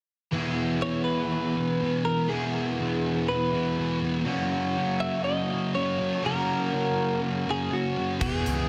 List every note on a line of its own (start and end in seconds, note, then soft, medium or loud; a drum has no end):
0.31 0.81 E2 medium
0.31 0.82 B2 medium
0.31 2.27 E3 medium
0.31 0.84 E3 medium
0.31 2.28 B3 medium
0.31 2.28 E4 medium
0.35 2.29 G#4 medium
0.82 1.80 E2 medium
0.82 1.58 B2 medium
0.82 1.55 E3 medium
0.82 1.04 C#5 medium
1.04 2.05 B4 medium
1.56 1.81 B2 soft
1.56 1.82 E3 medium
1.81 2.28 E2 medium
1.81 2.07 B2 medium
1.81 2.04 E3 medium
2.05 2.29 B2 medium
2.05 2.31 E3 medium
2.05 2.30 A#4 medium
2.28 2.77 E2 medium
2.28 2.79 B2 medium
2.28 4.24 E3 medium
2.28 4.25 B3 medium
2.28 4.25 E4 medium
2.28 3.31 G#4 medium
2.28 4.26 G#4 medium
2.32 2.81 E3 medium
2.79 3.76 E2 medium
2.79 3.54 B2 medium
2.79 3.51 E3 medium
3.28 3.98 B4 medium
3.52 3.78 B2 medium
3.52 3.79 E3 medium
3.78 4.25 E2 medium
3.78 4.03 B2 medium
3.78 4.01 E3 medium
4.02 4.26 B2 medium
4.02 4.25 E3 medium
4.25 4.76 F#2 medium
4.25 4.77 C#3 medium
4.25 6.21 F#3 medium
4.25 4.78 F#3 medium
4.25 6.22 A#3 medium
4.25 6.23 C#4 medium
4.25 6.23 F#4 medium
4.77 5.73 F#2 medium
4.77 5.51 C#3 medium
4.77 5.49 F#3 medium
5.00 5.24 E5 medium
5.24 5.74 D#5 medium
5.50 5.74 C#3 medium
5.50 5.76 F#3 medium
5.74 6.24 F#2 medium
5.74 6.00 C#3 medium
5.74 5.97 F#3 medium
5.74 6.25 C#5 medium
5.99 6.25 C#3 medium
5.99 6.25 F#3 medium
6.22 6.71 F#2 medium
6.22 6.72 C#3 medium
6.22 8.19 F#3 medium
6.22 8.20 A#3 medium
6.22 8.21 C#4 medium
6.22 7.20 A#4 medium
6.26 6.73 F#3 medium
6.26 8.21 F#4 medium
6.72 7.69 F#2 medium
6.72 7.48 C#3 medium
6.72 7.45 F#3 medium
7.46 7.71 C#3 medium
7.46 7.71 F#3 medium
7.50 7.74 G#4 medium
7.70 8.19 F#2 medium
7.70 7.98 C#3 medium
7.70 7.96 F#3 medium
7.70 8.23 F#4 medium
7.97 8.21 C#3 medium
7.97 8.20 F#3 medium
8.19 8.43 E1 medium
8.19 8.69 E2 medium
8.19 8.69 B2 medium
8.19 8.69 E3 medium
8.19 8.69 B3 medium
8.19 8.69 E4 medium
8.19 8.69 G#4 medium
8.19 kick medium
8.19 crash medium
8.23 8.69 E3 medium
8.46 8.68 C#2 medium
8.46 closed hi-hat medium